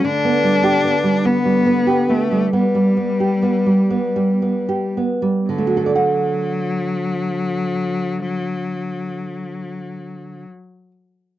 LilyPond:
<<
  \new Staff \with { instrumentName = "Nylon-string guitar" } { \time 12/8 \key d \major \tempo 4. = 41 d16 b16 g16 g'16 b16 g16 b16 g16 b16 g'16 b16 g16 b16 g16 b16 g'16 b16 g16 b16 g16 b16 g'16 b16 g16 | <d a fis' a' d'' fis''>1. | }
  \new Staff \with { instrumentName = "Cello" } { \time 12/8 \key d \major d'4. b4 a8 g2~ g8 r8 | fis1. | }
>>